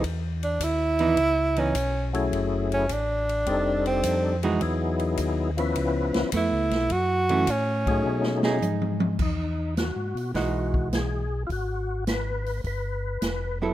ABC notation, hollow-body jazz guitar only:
X:1
M:4/4
L:1/8
Q:"Swing" 1/4=105
K:E
V:1 name="Hollow-body jazz guitar"
z3 [E,B,D] z [E,B,D] z2 | z6 z [E,G,_EF] | z6 [A,B,]2 | z [E,A,C] z3 [DG]3 |
z4 [E,G,DF]3 z | z6 z [F,B,EA] |]